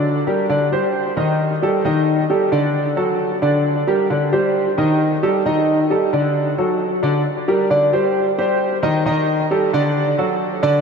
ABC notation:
X:1
M:4/4
L:1/8
Q:1/4=133
K:Gm
V:1 name="Grand piano"
[D,Dd] [G,GB] [D,Dd] [G,Gc]2 [E,Ee]2 [G,GA] | [E,Ee]2 [G,GA] [D,Dd]2 [^F,^FA]2 [D,Dd]- | [D,Dd] [G,GB] [D,Dd] [G,Gc]2 [E,Ee]2 [G,GA] | [E,Ee]2 [G,GA] [D,Dd]2 [^F,^FA]2 [D,Dd] |
z [G,GB] [D,Dd] [G,Gc]2 [G,Gc]2 [E,Ee] | [E,Ee]2 [G,GA] [D,Dd]2 [^F,^FA]2 [D,Dd] |]